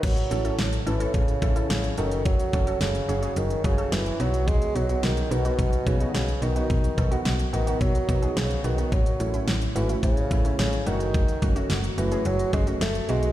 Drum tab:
CC |x---------------|----------------|----------------|----------------|
HH |xxxxxxxxxxxxxxxx|xxxxxxxxxxxxxxxx|xxxxxxxxxxxxxxxx|xxxxxxxxxxxxxxxx|
SD |----o-------o---|----o-------o---|----o-------o---|----o-------o---|
BD |o-------o-o-----|o-o-------o-----|o-------o-o-----|o-o-----o-o-----|

CC |----------------|----------------|
HH |xxxxxxxxxxxxxxxx|xxxxxxxxxxxxxxxx|
SD |----o-------o---|----o-------o---|
BD |o-------o-o-----|o-o-------o-----|